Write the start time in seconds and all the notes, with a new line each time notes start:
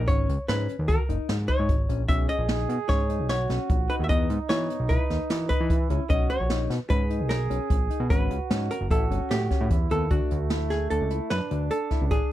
0.08 G#1 C#4 C#5, kick, closed hi-hat
0.29 C#2, closed hi-hat
0.48 G#2 C#4 B4, snare, closed hi-hat
0.69 closed hi-hat
0.79 D#2
0.88 F#4 A#4, kick, closed hi-hat
1.09 F#1 D#4, closed hi-hat
1.29 G#2, snare, closed hi-hat
1.48 D#4 C#5, kick, closed hi-hat
1.59 G#2
1.69 G#1, kick, closed hi-hat
1.89 A#1 C#4, closed hi-hat
2.08 B1 C#4 G#4 E5, kick, closed hi-hat
2.29 D#5, closed hi-hat
2.39 A#1
2.49 D#4, snare, closed hi-hat
2.69 B2, closed hi-hat
2.89 G#2 C#4 C#5, kick, snare, closed hi-hat
3.09 D#4, closed hi-hat
3.19 B1
3.29 F#4 C#5, snare, closed hi-hat
3.50 B1 C#4, snare, closed hi-hat
3.69 A#1, kick, closed hi-hat
3.90 D#4 B4, closed hi-hat
4.00 D#2
4.04 E5
4.09 E2 B3 D#4 D#5, kick, closed hi-hat
4.30 G#2, closed hi-hat
4.49 E3 B3 C#5, snare, closed hi-hat
4.70 closed hi-hat
4.80 B1
4.89 E4 B4, kick, closed hi-hat
5.10 D#2 D#4, snare, closed hi-hat
5.30 E3, snare, closed hi-hat
5.34 A#4
5.49 D#4 B4, kick, closed hi-hat
5.60 E3
5.70 E4, kick, closed hi-hat
5.90 C#2 C#4, closed hi-hat
6.10 B1 C#4 F#4 D#5, kick, closed hi-hat
6.30 C#5, closed hi-hat
6.40 A#1
6.50 D#4, snare, closed hi-hat
6.70 B2, snare, closed hi-hat
6.78 B4
6.90 G#2 C#4 G#4 B4, kick, closed hi-hat
7.10 D#4, closed hi-hat
7.20 B1
7.29 A#4, snare, closed hi-hat
7.50 B1 C#4, closed hi-hat
7.70 A#1, kick, closed hi-hat
7.90 D#4, closed hi-hat
8.00 B2
8.10 G#1 C#4 F#4 B4, kick, closed hi-hat
8.30 C#2, closed hi-hat
8.50 G#2 C#4, snare, closed hi-hat
8.71 A#4, closed hi-hat
8.81 F#1
8.90 A1 E4 F#4 A4, kick, closed hi-hat
9.11 G1 C#4, closed hi-hat
9.31 A2 G4, snare, closed hi-hat
9.51 C#4, kick, snare, closed hi-hat
9.61 A2
9.70 E2 E4, kick, closed hi-hat
9.90 D#2 B3 A4, closed hi-hat
10.10 D2 A3 D4 F#4, kick, closed hi-hat
10.31 D2, closed hi-hat
10.50 E4, snare, closed hi-hat
10.70 G#4, snare, closed hi-hat
10.90 D2 D4 A4, closed hi-hat
11.02 C#2
11.10 E4, closed hi-hat
11.30 F#2 D4 B4, snare, closed hi-hat
11.51 D2 D4, closed hi-hat
11.71 A4, closed hi-hat
11.91 E4, kick, snare, closed hi-hat
12.02 C#2
12.11 A1 D4 G#4, kick, closed hi-hat